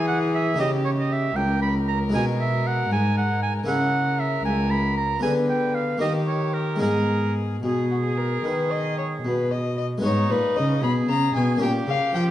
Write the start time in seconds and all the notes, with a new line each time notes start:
Already playing: E3 A#3 E4 G#4 A#4
0.07 F#5
0.34 E5
0.54 A#3 D#4 G4
0.59 C#3 G4 D#5
0.85 C#5
0.99 D#5
1.12 E5
1.36 C#2 A#4 G5
1.62 B5
1.88 A#5
2.09 B2 G#3 D#4 G#4
2.14 B2 G#5
2.40 E5
2.67 F#5
2.90 G#2 G#5
3.17 F#5
3.42 G#5
3.64 C#3 A#3 E4 G#4 F#5
3.68 C#3 A#4
4.19 E5
4.45 C#2 G#5
4.70 B5
4.97 A#5
5.19 B3 F4 G#4 B4 G#5
5.24 D3
5.49 G5
5.74 F5
5.98 A#3 D#4 G4 D#5
6.02 D#3 G4
6.27 C#5
6.54 A#4
6.76 G#3 B3 D#4
6.80 G#2 G#4 A#4
7.63 B2 G#4
7.91 F#4
8.04 G#4
8.18 A#4
8.44 D#3 B4
8.72 D#5
8.98 C#5
9.24 B2 B4
9.51 D#5
9.78 D#5
9.98 G#3 B3 D#4
10.02 G#2 D#4 G#4 C#5
10.30 A#2 B4
10.56 C#3 D#5
10.82 B2 G#4 B5
11.08 C#3 A#5
11.35 B2 G#5
11.57 A#3 C#4 G4
11.61 A#2 G5
11.87 C#3 F5
12.13 F3 G5